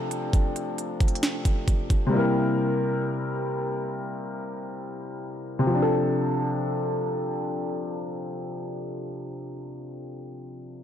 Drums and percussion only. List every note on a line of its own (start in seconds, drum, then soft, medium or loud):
0.11 closed hi-hat medium
0.33 kick loud
0.33 closed hi-hat medium
0.56 closed hi-hat medium
0.78 closed hi-hat medium
1.00 kick medium
1.00 closed hi-hat soft
1.08 closed hi-hat medium
1.15 closed hi-hat medium
1.23 snare loud
1.23 closed hi-hat medium
1.45 kick loud
1.45 closed hi-hat medium
1.68 kick medium
1.68 closed hi-hat medium
1.90 kick loud
1.90 closed hi-hat medium